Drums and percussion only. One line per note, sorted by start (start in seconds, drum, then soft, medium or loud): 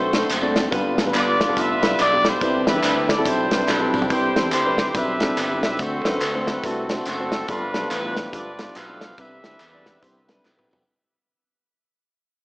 0.13 snare loud
0.13 closed hi-hat medium
0.13 tambourine medium
0.30 clap medium
0.30 closed hi-hat loud
0.30 tambourine medium
0.56 snare loud
0.56 closed hi-hat medium
0.56 tambourine medium
0.72 kick loud
0.72 closed hi-hat medium
0.72 tambourine medium
0.98 snare loud
0.98 closed hi-hat medium
0.98 tambourine medium
1.14 clap loud
1.14 closed hi-hat loud
1.14 tambourine loud
1.41 kick loud
1.41 snare loud
1.41 closed hi-hat medium
1.41 tambourine soft
1.57 kick loud
1.57 closed hi-hat loud
1.57 tambourine medium
1.83 snare loud
1.83 closed hi-hat loud
1.83 tambourine medium
1.99 clap medium
1.99 closed hi-hat medium
1.99 tambourine loud
2.25 snare loud
2.25 closed hi-hat medium
2.25 tambourine medium
2.41 kick loud
2.41 closed hi-hat medium
2.41 tambourine medium
2.67 snare loud
2.67 closed hi-hat medium
2.67 tambourine medium
2.83 clap loud
2.83 closed hi-hat loud
2.83 tambourine loud
3.09 kick loud
3.09 snare loud
3.09 closed hi-hat medium
3.09 tambourine soft
3.25 kick loud
3.25 closed hi-hat loud
3.25 tambourine medium
3.51 snare loud
3.51 closed hi-hat medium
3.51 tambourine medium
3.68 snare medium
3.68 clap medium
3.68 tambourine loud
3.94 mid tom loud
3.94 tambourine medium
4.02 floor tom medium
4.10 kick loud
4.10 closed hi-hat medium
4.10 tambourine medium
4.36 snare loud
4.36 closed hi-hat medium
4.36 tambourine medium
4.52 clap loud
4.52 closed hi-hat loud
4.52 tambourine loud
4.78 kick loud
4.78 snare loud
4.78 closed hi-hat medium
4.78 tambourine soft
4.95 kick loud
4.95 closed hi-hat loud
4.95 tambourine medium
5.20 snare loud
5.20 closed hi-hat medium
5.20 tambourine medium
5.37 clap medium
5.37 closed hi-hat loud
5.37 tambourine medium
5.63 snare loud
5.63 closed hi-hat medium
5.63 tambourine medium
5.79 kick loud
5.79 closed hi-hat medium
5.79 tambourine medium
6.05 snare loud
6.05 closed hi-hat medium
6.05 tambourine medium
6.21 clap loud
6.21 closed hi-hat loud
6.21 tambourine loud
6.47 kick loud
6.47 snare loud
6.47 closed hi-hat medium
6.47 tambourine soft
6.64 kick loud
6.64 closed hi-hat loud
6.64 tambourine medium
6.89 snare loud
6.89 closed hi-hat medium
6.89 tambourine medium
7.05 clap medium
7.05 closed hi-hat medium
7.05 tambourine medium
7.32 snare loud
7.32 closed hi-hat medium
7.32 tambourine medium
7.48 kick loud
7.48 closed hi-hat medium
7.48 tambourine medium
7.74 snare loud
7.74 closed hi-hat medium
7.74 tambourine medium
7.91 clap loud
7.91 closed hi-hat loud
7.91 tambourine loud
8.16 kick medium
8.16 snare loud
8.16 closed hi-hat medium
8.16 tambourine soft
8.33 kick loud
8.33 closed hi-hat loud
8.33 tambourine medium
8.59 snare loud
8.59 closed hi-hat medium
8.59 tambourine medium
8.75 clap medium
8.75 closed hi-hat loud
8.75 tambourine medium
9.01 snare loud
9.01 closed hi-hat medium
9.01 tambourine medium
9.18 kick loud
9.18 closed hi-hat medium
9.18 tambourine medium
9.44 snare loud
9.44 closed hi-hat medium
9.44 tambourine medium
9.60 clap loud
9.60 closed hi-hat loud
9.60 tambourine loud
9.86 kick medium
9.86 snare loud
9.86 closed hi-hat medium
9.86 tambourine soft
10.03 kick loud
10.03 closed hi-hat loud
10.03 tambourine medium
10.29 snare loud
10.29 closed hi-hat medium
10.29 tambourine medium
10.45 snare medium
10.45 clap medium
10.45 tambourine medium
10.59 mid tom medium
10.71 floor tom loud
10.71 tambourine medium